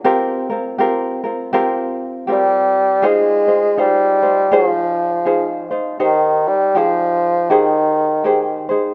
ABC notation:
X:1
M:4/4
L:1/8
Q:"Swing" 1/4=80
K:Fm
V:1 name="Ukulele"
[CFGB] [CFB] [CFGB] [CFB] [CFGB]2 [CFGB]2 | [EFAc] [EFc] [EFc] [EFc] [EFAc]2 [EFAc] [EFc] | [K:Ab] [EGc]2 [EGAc]2 [EGAc]2 [EGAc] [EAc] |]
V:2 name="Bassoon" clef=bass
z6 G,2 | A,2 G,2 F,3 z | [K:Ab] E, G, F,2 E,3 z |]